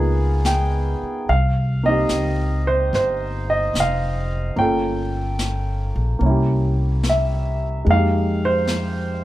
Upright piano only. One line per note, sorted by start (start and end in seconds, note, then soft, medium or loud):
0.00 1.29 A#3 medium
0.00 1.29 B3 soft
0.00 1.29 D#4 soft
0.00 1.30 F4 medium
0.00 0.48 G#4 medium
0.46 1.24 G5 medium
1.29 1.86 F5 medium
1.83 4.55 A#3 soft
1.83 4.58 C4 soft
1.83 4.59 D#4 soft
1.83 2.70 D#5 medium
1.89 4.60 G4 medium
2.67 2.92 C5 medium
2.95 3.51 C5 medium
3.50 3.77 D#5 medium
3.80 4.62 F5 medium
4.56 6.17 A#3 soft
4.56 6.21 C#4 soft
4.56 6.23 F4 soft
4.56 7.00 G5 medium
4.61 6.24 A4 soft
6.19 7.84 A#3 soft
6.19 7.86 C#4 soft
6.25 7.88 E4 soft
6.30 7.90 G4 medium
7.09 7.91 E5 medium
7.85 9.24 G#3 soft
7.85 9.24 A#3 soft
7.91 9.24 D#4 soft
7.91 8.40 F5 medium
7.96 9.24 G4 soft
8.45 9.24 C5 medium